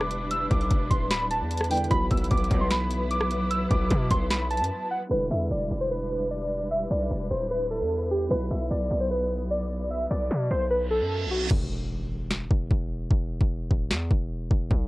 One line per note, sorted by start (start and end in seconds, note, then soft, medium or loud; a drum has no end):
0.00 0.47 E1 loud
0.00 1.66 D3 medium
0.00 1.67 G3 medium
0.00 1.88 G3 medium
0.00 1.67 B3 medium
0.00 1.88 D4 medium
0.00 1.68 E4 medium
0.00 1.87 E4 medium
0.00 1.68 B4 medium
0.00 1.87 B4 loud
0.00 0.28 D6 medium
0.00 cross-stick medium
0.11 closed hi-hat medium
0.31 0.46 E6 medium
0.31 closed hi-hat medium
0.51 0.70 B1 loud
0.51 0.88 D6 medium
0.51 kick loud
0.51 closed hi-hat medium
0.61 closed hi-hat soft
0.71 0.90 E1 loud
0.71 kick loud
0.71 closed hi-hat medium
0.90 1.42 D1 loud
0.90 1.06 C6 medium
0.90 kick medium
0.90 closed hi-hat medium
1.11 1.26 B5 medium
1.11 snare loud
1.11 closed hi-hat medium
1.31 1.68 A5 medium
1.31 closed hi-hat medium
1.41 1.88 E2 loud
1.51 closed hi-hat medium
1.57 cross-stick medium
1.57 closed hi-hat medium
1.64 closed hi-hat medium
1.70 1.90 D3 medium
1.70 1.91 G3 soft
1.70 1.89 B3 soft
1.70 1.91 E4 soft
1.70 1.91 D5 medium
1.70 1.86 G5 medium
1.70 closed hi-hat medium
1.70 open hi-hat medium
1.77 closed hi-hat soft
1.84 closed hi-hat soft
1.89 2.10 B1 loud
1.89 5.06 E3 medium
1.89 5.06 F#3 medium
1.89 5.08 F#3 medium
1.89 5.08 B3 medium
1.89 5.07 B3 medium
1.89 5.08 E4 medium
1.89 5.07 F#4 medium
1.89 5.08 B4 loud
1.89 5.08 B4 medium
1.89 2.06 B5 loud
1.89 kick loud
1.89 closed hi-hat medium
2.11 2.30 B1 loud
2.11 2.26 E6 medium
2.11 kick medium
2.11 closed hi-hat medium
2.17 closed hi-hat medium
2.24 closed hi-hat medium
2.31 2.50 B1 loud
2.31 2.59 D6 medium
2.31 kick loud
2.31 closed hi-hat medium
2.37 closed hi-hat soft
2.44 closed hi-hat soft
2.51 3.67 B1 loud
2.51 2.79 B2 loud
2.51 2.79 F#3 loud
2.51 kick loud
2.51 closed hi-hat medium
2.61 2.68 C6 medium
2.71 3.08 B5 medium
2.71 snare loud
2.71 closed hi-hat medium
2.91 closed hi-hat medium
3.11 3.48 D6 medium
3.11 closed hi-hat medium
3.21 cross-stick medium
3.31 closed hi-hat medium
3.50 3.66 E6 medium
3.50 closed hi-hat medium
3.71 3.90 B1 loud
3.71 4.08 D6 medium
3.71 kick loud
3.71 closed hi-hat medium
3.91 4.10 B2 loud
3.91 kick loud
3.91 closed hi-hat medium
4.11 4.62 B1 loud
4.11 4.26 C6 medium
4.11 kick medium
4.11 closed hi-hat medium
4.30 4.46 B5 medium
4.30 snare loud
4.30 closed hi-hat medium
4.51 4.88 A5 medium
4.51 closed hi-hat soft
4.57 4.71 F#2 loud
4.57 closed hi-hat medium
4.64 closed hi-hat medium
4.91 5.06 F#5 medium
5.09 5.30 E1 loud
5.09 8.26 D3 medium
5.09 8.27 G3 medium
5.09 8.28 G3 medium
5.09 8.28 D4 medium
5.09 11.47 E4 medium
5.09 8.27 E4 medium
5.09 11.47 B4 medium
5.09 5.26 B4 loud
5.09 8.28 B4 medium
5.31 5.50 E2 loud
5.31 5.46 E5 medium
5.51 5.70 E1 loud
5.51 5.79 D5 medium
5.71 6.87 E1 loud
5.81 5.88 C5 medium
5.91 6.28 B4 medium
6.31 6.68 D5 medium
6.71 6.86 E5 medium
6.91 7.10 B1 loud
6.91 7.28 D5 medium
7.11 7.30 E1 loud
7.30 7.82 D1 loud
7.30 7.46 C5 medium
7.51 7.66 B4 medium
7.71 8.08 A4 medium
7.81 8.28 E2 loud
8.11 8.26 G4 medium
8.29 8.50 B1 loud
8.29 11.46 B2 medium
8.29 11.46 F#3 medium
8.29 11.48 F#3 medium
8.29 11.48 B3 medium
8.29 11.47 E4 medium
8.29 8.46 B4 loud
8.29 11.48 B4 medium
8.51 8.70 B1 loud
8.51 8.66 E5 medium
8.71 8.90 B1 loud
8.71 8.99 D5 medium
8.91 10.07 B1 loud
9.01 9.08 C5 medium
9.11 9.48 B4 medium
9.51 9.88 D5 medium
9.91 10.06 E5 medium
10.11 10.30 B1 loud
10.11 10.48 D5 medium
10.31 10.50 B2 loud
10.51 11.02 B1 loud
10.51 10.66 C5 medium
10.70 10.86 B4 medium
10.70 reverse cymbal medium
10.91 11.28 A4 medium
11.01 11.27 F#2 medium
11.26 11.49 B1 loud
11.31 11.46 F#4 medium
11.51 12.47 E1 loud
11.51 kick loud
11.51 crash medium
11.51 impact medium
12.31 snare loud
12.51 12.70 E1 loud
12.51 kick loud
12.71 13.09 E1 loud
12.71 kick medium
13.11 13.40 E1 loud
13.11 kick loud
13.41 13.70 E1 loud
13.41 kick medium
13.71 13.92 D1 loud
13.71 kick medium
13.91 14.10 E2 loud
13.91 snare loud
14.11 14.49 E1 loud
14.11 kick loud
14.51 14.70 E1 loud
14.51 kick medium
14.71 14.88 B1 loud
14.71 kick loud